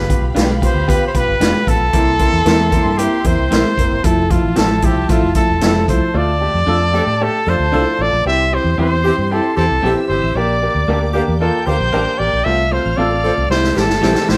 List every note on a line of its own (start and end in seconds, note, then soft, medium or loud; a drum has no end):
0.00 0.15 G1 loud
0.00 1.90 G4 medium
0.00 0.35 B4 medium
0.00 1.90 F5 medium
0.00 1.90 B5 medium
0.09 0.25 B3 medium
0.09 0.26 F4 medium
0.09 0.26 G4 medium
0.09 kick medium
0.09 closed hi-hat medium
0.22 0.33 B1 medium
0.35 0.67 B1 medium
0.35 0.52 B3 medium
0.35 0.44 D4 medium
0.35 0.45 F4 medium
0.35 0.52 F4 medium
0.35 0.52 G4 medium
0.35 0.45 B4 medium
0.35 snare loud
0.35 closed hi-hat medium
0.61 0.78 B3 medium
0.61 0.78 F4 medium
0.61 0.78 G4 medium
0.61 0.91 C5 medium
0.61 kick medium
0.61 closed hi-hat medium
0.74 0.96 D2 medium
0.87 1.04 B3 medium
0.87 1.04 F4 medium
0.87 1.04 G4 loud
0.87 1.07 B4 loud
0.87 kick medium
0.87 closed hi-hat medium
1.07 1.18 C5 medium
1.14 1.25 B1 medium
1.14 1.31 B3 medium
1.14 1.31 F4 medium
1.14 1.31 G4 medium
1.14 1.70 B4 loud
1.14 kick medium
1.14 closed hi-hat medium
1.28 1.38 G1 medium
1.40 1.51 F1 medium
1.40 1.57 B3 medium
1.40 1.50 D4 medium
1.40 1.57 F4 medium
1.40 1.50 F4 medium
1.40 1.57 G4 medium
1.40 1.51 B4 loud
1.40 snare loud
1.40 closed hi-hat medium
1.67 1.78 A1 medium
1.67 1.84 B3 medium
1.67 1.84 F4 medium
1.67 1.84 A4 medium
1.67 2.99 A4 loud
1.67 kick medium
1.67 closed hi-hat medium
1.80 1.91 B1 medium
1.92 2.25 C2 loud
1.92 2.10 A#3 medium
1.92 2.10 C4 medium
1.92 2.10 E4 loud
1.92 4.00 G4 medium
1.92 3.99 E5 medium
1.92 4.00 C6 medium
1.92 kick loud
1.92 closed hi-hat medium
2.19 2.36 A#3 medium
2.19 2.36 C4 medium
2.19 2.36 E4 medium
2.19 kick medium
2.19 closed hi-hat medium
2.33 2.43 E2 medium
2.45 2.78 E2 medium
2.45 2.62 A#3 medium
2.45 2.62 C4 medium
2.45 2.56 C4 medium
2.45 2.62 E4 loud
2.45 2.56 E4 medium
2.45 2.56 A#4 medium
2.45 snare loud
2.45 closed hi-hat medium
2.72 2.88 A#3 medium
2.72 2.89 C4 medium
2.72 2.89 E4 medium
2.72 kick medium
2.72 closed hi-hat medium
2.85 3.06 G2 medium
2.98 3.15 A#3 loud
2.98 3.15 C4 medium
2.98 3.15 E4 loud
2.98 3.28 G4 medium
2.98 closed hi-hat medium
3.24 3.36 E2 medium
3.24 3.41 A#3 medium
3.24 3.42 C4 medium
3.24 3.42 E4 medium
3.24 4.06 C5 loud
3.24 kick medium
3.24 closed hi-hat medium
3.38 3.49 C2 medium
3.51 3.62 A#1 medium
3.51 3.68 A#3 medium
3.51 3.61 C4 medium
3.51 3.68 C4 medium
3.51 3.61 E4 medium
3.51 3.68 E4 medium
3.51 3.61 A#4 medium
3.51 snare loud
3.51 closed hi-hat medium
3.77 3.88 F1 medium
3.77 3.95 A#3 medium
3.77 3.95 C4 medium
3.77 3.95 E4 medium
3.77 kick medium
3.77 closed hi-hat medium
3.91 4.02 G1 medium
4.03 4.36 F1 loud
4.03 4.20 F3 medium
4.03 4.21 A3 medium
4.03 4.21 E4 loud
4.03 6.10 F4 medium
4.03 4.32 A4 medium
4.03 6.10 E5 medium
4.03 6.11 A5 medium
4.03 kick loud
4.03 closed hi-hat medium
4.30 4.47 F3 medium
4.30 4.47 A3 medium
4.30 4.48 E4 medium
4.30 4.59 F4 medium
4.30 kick medium
4.30 closed hi-hat medium
4.45 4.55 A1 medium
4.56 4.89 A1 medium
4.56 4.73 F3 medium
4.56 4.69 F3 medium
4.56 4.73 A3 medium
4.56 4.66 C4 medium
4.56 4.66 E4 medium
4.56 4.73 E4 medium
4.56 4.69 E4 medium
4.56 4.67 A4 medium
4.56 4.86 A4 medium
4.56 4.69 A4 medium
4.56 snare loud
4.56 closed hi-hat medium
4.82 5.00 F3 medium
4.82 4.95 F3 medium
4.82 5.00 A3 medium
4.82 5.00 E4 medium
4.82 4.95 E4 medium
4.82 5.11 G4 medium
4.82 4.95 A4 medium
4.82 kick medium
4.82 closed hi-hat medium
4.96 5.07 C2 medium
5.09 5.20 A1 medium
5.09 5.26 F3 medium
5.09 5.22 F3 medium
5.09 5.26 A3 medium
5.09 5.26 E4 loud
5.09 5.22 E4 medium
5.09 5.36 F4 medium
5.09 5.22 A4 medium
5.09 kick medium
5.09 closed hi-hat medium
5.23 5.33 F1 medium
5.35 5.52 F3 medium
5.35 5.52 A3 medium
5.35 5.53 E4 medium
5.35 5.85 A4 medium
5.35 kick medium
5.35 closed hi-hat medium
5.50 5.60 E1 medium
5.61 5.84 F1 medium
5.61 5.79 F3 medium
5.61 6.01 F3 medium
5.61 5.79 A3 medium
5.61 5.71 C4 medium
5.61 5.72 E4 medium
5.61 5.79 E4 medium
5.61 6.01 E4 medium
5.61 5.72 A4 medium
5.61 6.01 A4 loud
5.61 snare loud
5.61 closed hi-hat medium
5.88 5.99 C2 medium
5.88 6.05 F3 medium
5.88 6.05 A3 medium
5.88 6.06 E4 medium
5.88 6.18 C5 medium
5.88 kick medium
5.88 closed hi-hat medium
6.14 6.46 D2 loud
6.14 6.31 A3 loud
6.14 6.31 D4 medium
6.14 6.31 F4 loud
6.14 8.21 A4 medium
6.14 7.25 D5 loud
6.14 8.22 A5 medium
6.41 6.57 A3 medium
6.41 6.58 D4 medium
6.41 6.58 G4 medium
6.54 6.65 F2 medium
6.67 6.99 F2 medium
6.67 6.84 A3 medium
6.67 6.76 D4 medium
6.67 6.84 D4 medium
6.67 6.77 F4 medium
6.67 6.84 F4 medium
6.67 6.77 A4 medium
6.93 7.02 F3 medium
6.93 7.10 A3 medium
6.93 7.10 D4 medium
6.93 7.03 D4 medium
6.93 7.10 G4 medium
6.93 7.03 A4 loud
7.07 7.28 A2 medium
7.21 7.37 A3 medium
7.21 7.37 D4 medium
7.21 7.37 G4 loud
7.21 7.51 A4 medium
7.46 7.57 F2 medium
7.46 7.55 F3 medium
7.46 7.63 A3 medium
7.46 7.55 D4 medium
7.46 7.63 D4 medium
7.46 7.63 F4 medium
7.46 7.55 A4 loud
7.46 8.03 C5 loud
7.59 7.70 D2 medium
7.72 7.84 C2 medium
7.72 8.10 F3 medium
7.72 7.90 A3 medium
7.72 7.82 D4 medium
7.72 8.10 D4 loud
7.72 7.90 D4 medium
7.72 7.90 E4 medium
7.72 7.82 F4 medium
7.72 8.10 A4 loud
7.72 7.83 A4 medium
7.99 8.09 A1 medium
7.99 8.16 A3 medium
7.99 8.16 D4 medium
7.99 8.16 F4 medium
7.99 8.27 D5 loud
8.13 8.23 A#1 medium
8.25 8.57 C2 loud
8.25 8.42 C4 medium
8.25 8.42 E4 medium
8.25 8.42 G4 loud
8.25 9.80 C5 medium
8.25 8.56 E5 loud
8.25 9.80 C6 medium
8.52 8.68 C4 medium
8.52 8.68 E4 medium
8.52 8.69 G4 medium
8.52 8.79 C5 medium
8.64 8.75 E2 medium
8.78 9.10 E2 loud
8.78 8.94 C4 medium
8.78 8.87 C4 medium
8.78 8.95 E4 medium
8.78 8.88 E4 medium
8.78 8.95 G4 medium
8.78 8.88 G4 medium
8.78 9.33 C5 loud
9.04 9.13 E3 loud
9.04 9.21 C4 medium
9.04 9.13 C4 loud
9.04 9.21 E4 medium
9.04 9.13 G4 loud
9.04 9.21 G4 medium
9.18 9.39 G2 medium
9.31 9.47 C4 medium
9.31 9.47 E4 medium
9.31 9.48 G4 loud
9.31 9.56 A4 medium
9.56 9.68 E2 medium
9.56 9.65 E3 medium
9.56 9.65 C4 medium
9.56 9.73 C4 medium
9.56 9.74 E4 medium
9.56 9.65 G4 medium
9.56 9.74 G4 medium
9.56 9.94 A4 medium
9.70 9.81 C2 medium
9.82 9.94 A#1 medium
9.82 10.21 E3 medium
9.82 9.92 C4 medium
9.82 10.21 C4 medium
9.82 10.00 C4 medium
9.82 9.93 E4 medium
9.82 10.00 E4 medium
9.82 9.93 G4 medium
9.82 10.21 G4 loud
9.82 10.01 G4 medium
9.82 10.34 E5 medium
9.82 10.34 E6 medium
10.08 10.20 G1 medium
10.08 10.26 C4 medium
10.08 10.27 E4 medium
10.08 10.27 G4 medium
10.08 10.38 C5 medium
10.22 10.33 A1 medium
10.35 10.67 A#1 loud
10.35 10.52 A#3 medium
10.35 10.52 D4 medium
10.35 10.53 G4 loud
10.35 11.38 D5 medium
10.35 11.14 D5 loud
10.35 11.38 D6 medium
10.62 10.78 A#3 medium
10.62 10.78 D4 medium
10.62 10.79 G4 medium
10.75 10.85 D2 medium
10.88 11.20 D2 loud
10.88 10.97 A#3 medium
10.88 11.05 A#3 medium
10.88 10.98 D4 medium
10.88 11.05 D4 medium
10.88 10.98 G4 loud
10.88 11.05 G4 medium
11.13 11.22 D3 medium
11.13 11.22 A#3 medium
11.13 11.31 A#3 medium
11.13 11.31 D4 medium
11.13 11.22 G4 loud
11.13 11.31 G4 loud
11.28 11.49 E2 medium
11.40 11.57 A#3 medium
11.40 11.57 D4 medium
11.40 11.57 F4 loud
11.40 11.68 A4 medium
11.40 12.44 G5 medium
11.40 12.44 G6 medium
11.66 11.77 D2 medium
11.66 11.75 D3 medium
11.66 11.75 A#3 medium
11.66 11.83 A#3 medium
11.66 11.83 D4 medium
11.66 11.75 G4 loud
11.66 11.84 G4 medium
11.66 12.20 C5 loud
11.80 11.91 A#1 loud
11.93 12.04 A1 medium
11.93 12.31 G3 loud
11.93 12.02 A#3 medium
11.93 12.09 A#3 medium
11.93 12.30 D4 medium
11.93 12.10 D4 medium
11.93 12.03 D4 medium
11.93 12.03 G4 medium
11.93 12.10 G4 medium
11.93 12.30 A#4 loud
12.18 12.30 A1 medium
12.18 12.36 A#3 medium
12.18 12.36 D4 medium
12.18 12.36 G4 medium
12.18 12.46 D5 loud
12.33 12.44 A#1 medium
12.44 12.78 C2 loud
12.44 12.62 A3 medium
12.44 12.62 C4 medium
12.44 12.62 F4 loud
12.44 12.74 E5 loud
12.44 13.49 F5 medium
12.44 13.49 F6 medium
12.71 12.88 A3 medium
12.71 12.88 C4 medium
12.71 12.88 F4 medium
12.71 12.99 C5 medium
12.86 12.96 A1 medium
12.97 13.30 A1 medium
12.97 13.14 A3 medium
12.97 13.07 C4 medium
12.97 13.15 C4 medium
12.97 13.07 F4 medium
12.97 13.15 F4 medium
12.97 13.08 A4 medium
12.97 13.50 D5 loud
13.23 13.31 F3 medium
13.23 13.40 A3 medium
13.23 13.32 C4 medium
13.23 13.41 C4 medium
13.23 13.41 F4 medium
13.23 13.32 A4 loud
13.38 13.48 C2 medium
13.50 13.71 C2 loud
13.50 13.67 G3 medium
13.50 13.67 C4 medium
13.50 13.67 E4 loud
13.50 13.80 C5 loud
13.50 14.37 E5 medium
13.50 14.37 E6 medium
13.50 snare medium
13.64 snare soft
13.75 13.87 A1 medium
13.75 13.84 E3 medium
13.75 13.93 G3 medium
13.75 13.84 C4 medium
13.75 13.93 C4 medium
13.75 13.93 E4 medium
13.75 13.84 G4 medium
13.75 14.31 A4 medium
13.75 snare medium
13.90 14.00 G1 medium
13.90 snare medium
14.02 14.13 A#1 medium
14.02 14.37 E3 medium
14.02 14.11 G3 medium
14.02 14.19 G3 medium
14.02 14.37 C4 medium
14.02 14.12 C4 medium
14.02 14.19 C4 medium
14.02 14.12 E4 medium
14.02 14.19 E4 medium
14.02 14.37 G4 loud
14.02 snare medium
14.15 snare medium
14.29 14.37 A1 medium
14.29 14.37 G3 medium
14.29 14.37 C4 medium
14.29 14.37 E4 medium
14.29 14.37 C5 medium
14.29 snare loud